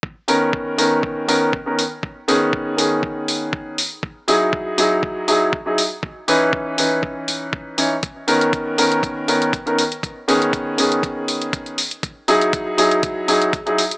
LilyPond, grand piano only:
\new Staff \with { instrumentName = "Grand piano" } { \time 4/4 \key b \major \tempo 4 = 120 r8 <dis b cis' ais'>4 <dis b cis' ais'>4 <dis b cis' ais'>8 r16 <dis b cis' ais'>16 r8 | r8 <dis b cis' gis'>4 <dis b cis' gis'>2 r8 | r8 <fis dis' e' gis'>4 <fis dis' e' gis'>4 <fis dis' e' gis'>8 r16 <fis dis' e' gis'>16 r8 | r8 <e cis' dis' b'>4 <e cis' dis' b'>2 <e cis' dis' cis''>16 r16 |
r8 <dis b cis' ais'>4 <dis b cis' ais'>4 <dis b cis' ais'>8 r16 <dis b cis' ais'>16 r8 | r8 <dis b cis' gis'>4 <dis b cis' gis'>2 r8 | r8 <fis dis' e' gis'>4 <fis dis' e' gis'>4 <fis dis' e' gis'>8 r16 <fis dis' e' gis'>16 r8 | }